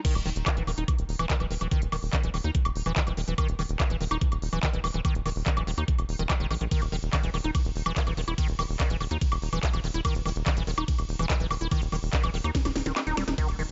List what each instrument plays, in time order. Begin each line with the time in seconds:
0.05 acid bass D#3, kick, closed hi-hat, crash
0.15 analog synth bass D#1, closed hi-hat, high woodblock
0.26 analog synth bass D#1, acid bass D#3, open hi-hat
0.36 analog synth bass D#1, closed hi-hat
0.46 acid bass D#3, kick, clap, closed hi-hat, high woodblock
0.57 analog synth bass D#1, acid bass E3, closed hi-hat
0.67 analog synth bass D#1, acid bass D#3, open hi-hat, high woodblock
0.78 analog synth bass D#1, acid bass D#4, closed hi-hat
0.88 kick, closed hi-hat, high woodblock
0.99 analog synth bass D#1, closed hi-hat
1.09 analog synth bass D#1, open hi-hat
1.19 analog synth bass D#1, acid bass E3, closed hi-hat, high woodblock
1.30 acid bass D#3, kick, clap, closed hi-hat
1.40 analog synth bass D#1, acid bass E3, closed hi-hat, high woodblock
1.51 analog synth bass D#1, acid bass D#3, open hi-hat
1.61 analog synth bass D#1, acid bass E3, closed hi-hat, high woodblock
1.71 acid bass D#3, kick, closed hi-hat
1.82 analog synth bass D#1, closed hi-hat
1.92 analog synth bass D#1, acid bass D#3, open hi-hat, high woodblock
2.03 analog synth bass D#1, open hi-hat
2.13 acid bass D#3, kick, clap, closed hi-hat, high woodblock
2.23 analog synth bass D#1, acid bass E3, closed hi-hat
2.34 analog synth bass D#1, acid bass D#3, open hi-hat, high woodblock
2.44 analog synth bass D#2, acid bass D#4, closed hi-hat
2.55 kick, closed hi-hat
2.65 analog synth bass E1, closed hi-hat, high woodblock
2.76 analog synth bass D#1, open hi-hat
2.86 analog synth bass D#1, acid bass E3, closed hi-hat, high woodblock
2.96 acid bass D#3, kick, clap, closed hi-hat
3.07 analog synth bass D#1, acid bass E3, closed hi-hat, high woodblock
3.17 analog synth bass D#1, acid bass D#3, open hi-hat
3.28 analog synth bass D#1, acid bass E3, closed hi-hat
3.38 acid bass D#3, kick, closed hi-hat, high woodblock
3.48 analog synth bass D#1, closed hi-hat
3.59 analog synth bass D#1, acid bass D#3, open hi-hat, high woodblock
3.69 analog synth bass D#1, closed hi-hat
3.80 acid bass D#3, kick, clap, closed hi-hat, high woodblock
3.90 analog synth bass D#1, acid bass E3, closed hi-hat
4.01 analog synth bass D#1, acid bass D#3, open hi-hat
4.11 analog synth bass D#1, acid bass D#4, closed hi-hat, high woodblock
4.21 kick, closed hi-hat
4.32 analog synth bass D#1, closed hi-hat, high woodblock
4.42 analog synth bass D#1, open hi-hat
4.53 analog synth bass D#1, acid bass E3, closed hi-hat, high woodblock
4.63 acid bass D#3, kick, clap, closed hi-hat
4.74 analog synth bass D#1, acid bass E3, closed hi-hat
4.84 analog synth bass D#1, acid bass D#3, open hi-hat, high woodblock
4.94 analog synth bass D#1, acid bass E3, closed hi-hat
5.05 acid bass D#3, kick, closed hi-hat, high woodblock
5.15 analog synth bass D#1, closed hi-hat
5.26 analog synth bass D#1, acid bass D#3, open hi-hat, high woodblock
5.36 analog synth bass D#1, open hi-hat
5.46 acid bass D#3, kick, clap, closed hi-hat
5.57 analog synth bass D#1, acid bass E3, closed hi-hat, high woodblock
5.67 analog synth bass D#1, acid bass D#3, open hi-hat
5.78 analog synth bass D#2, acid bass D#4, closed hi-hat, high woodblock
5.88 kick, closed hi-hat
5.99 analog synth bass E1, closed hi-hat, high woodblock
6.09 analog synth bass D#1, open hi-hat
6.19 analog synth bass D#1, acid bass D#3, closed hi-hat
6.30 acid bass E3, kick, clap, closed hi-hat, high woodblock
6.40 analog synth bass E1, acid bass D#3, closed hi-hat
6.51 analog synth bass A#1, acid bass D#3, open hi-hat, high woodblock
6.61 analog synth bass A#1, acid bass D#3, closed hi-hat
6.71 acid bass D#3, kick, closed hi-hat, ride
6.82 analog synth bass D#1, closed hi-hat, high woodblock
6.92 analog synth bass D#1, acid bass D#3, open hi-hat
7.03 analog synth bass D#1, closed hi-hat
7.13 acid bass D#3, kick, clap, closed hi-hat, ride, high woodblock
7.23 analog synth bass D#1, acid bass E3, closed hi-hat
7.34 analog synth bass D#1, acid bass D#3, open hi-hat, high woodblock
7.44 analog synth bass D#1, acid bass D#4, closed hi-hat
7.55 kick, closed hi-hat, ride, high woodblock
7.65 analog synth bass D#1, closed hi-hat
7.76 analog synth bass D#1, open hi-hat
7.86 analog synth bass D#1, acid bass E3, closed hi-hat, high woodblock
7.96 acid bass D#3, kick, clap, closed hi-hat, ride
8.07 analog synth bass D#1, acid bass E3, closed hi-hat, high woodblock
8.17 analog synth bass D#1, acid bass D#3, open hi-hat
8.28 analog synth bass D#1, acid bass E4, closed hi-hat, high woodblock
8.38 acid bass D#3, kick, closed hi-hat, ride
8.48 analog synth bass D#1, closed hi-hat
8.59 analog synth bass D#1, acid bass D#3, open hi-hat, high woodblock
8.69 analog synth bass D#1, open hi-hat
8.80 acid bass D#3, kick, clap, closed hi-hat, ride, high woodblock
8.90 analog synth bass D#1, acid bass E3, closed hi-hat
9.01 analog synth bass D#1, acid bass D#3, open hi-hat, high woodblock
9.11 analog synth bass D#2, acid bass D#4, closed hi-hat
9.21 kick, closed hi-hat, ride
9.32 analog synth bass E1, closed hi-hat, high woodblock
9.42 analog synth bass D#1, open hi-hat
9.53 analog synth bass D#1, acid bass E3, closed hi-hat, high woodblock
9.63 acid bass D#3, kick, clap, closed hi-hat, ride
9.73 analog synth bass D#1, acid bass E3, closed hi-hat, high woodblock
9.84 analog synth bass D#1, acid bass D#3, open hi-hat
9.94 analog synth bass D#1, acid bass E4, closed hi-hat
10.05 acid bass D#3, kick, closed hi-hat, ride, high woodblock
10.15 analog synth bass D#1, closed hi-hat
10.26 analog synth bass D#1, acid bass D#3, open hi-hat, high woodblock
10.36 analog synth bass D#1, closed hi-hat
10.46 acid bass D#3, kick, clap, closed hi-hat, ride, high woodblock
10.57 analog synth bass D#1, acid bass E3, closed hi-hat
10.67 analog synth bass D#1, acid bass D#3, open hi-hat
10.78 analog synth bass D#1, acid bass D#4, closed hi-hat, high woodblock
10.88 kick, closed hi-hat, ride
10.98 analog synth bass D#1, closed hi-hat, high woodblock
11.09 analog synth bass D#1, open hi-hat
11.19 analog synth bass D#1, acid bass E3, closed hi-hat, high woodblock
11.30 acid bass D#3, kick, clap, closed hi-hat, ride
11.40 analog synth bass D#1, acid bass E3, closed hi-hat
11.51 analog synth bass D#1, acid bass D#3, open hi-hat, high woodblock
11.61 analog synth bass D#1, acid bass E4, closed hi-hat
11.71 acid bass D#3, kick, closed hi-hat, ride, high woodblock
11.82 analog synth bass D#1, closed hi-hat
11.92 analog synth bass D#1, acid bass D#3, open hi-hat, high woodblock
12.03 analog synth bass D#1, open hi-hat
12.13 acid bass D#3, kick, clap, closed hi-hat, ride
12.23 analog synth bass D#1, acid bass E3, closed hi-hat, high woodblock
12.34 analog synth bass D#1, acid bass D#3, open hi-hat
12.44 analog synth bass D#2, acid bass D#4, closed hi-hat, high woodblock
12.55 kick, snare, closed hi-hat, ride
12.65 analog synth bass D#1, snare, closed hi-hat, high woodblock
12.76 analog synth bass D#1, snare, open hi-hat
12.86 analog synth bass D#1, acid bass D#3, snare, closed hi-hat
12.96 acid bass D#4, snare, clap, closed hi-hat, ride, high woodblock
13.07 analog synth bass D#1, acid bass D#4, closed hi-hat
13.17 analog synth bass D#1, acid bass G3, snare, open hi-hat, high woodblock
13.28 analog synth bass D#1, acid bass D#4, snare, closed hi-hat
13.38 acid bass D#3, kick, closed hi-hat, ride
13.48 analog synth bass D#1, closed hi-hat, high woodblock
13.59 analog synth bass D#1, acid bass D#3, open hi-hat